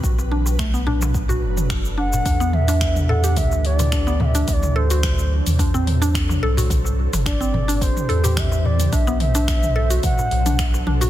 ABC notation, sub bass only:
X:1
M:4/4
L:1/16
Q:"Swing 16ths" 1/4=108
K:Em
V:1 name="Sub bass" clef=bass
B,,,8- B,,,2 F,,,6 | E,,8 D,,8 | D,,6- D,, E,,6- E,, C,,2- | C,,3 G,,,6 z E,,6 |
B,,,8 z2 B,,,4 B,,,2 |]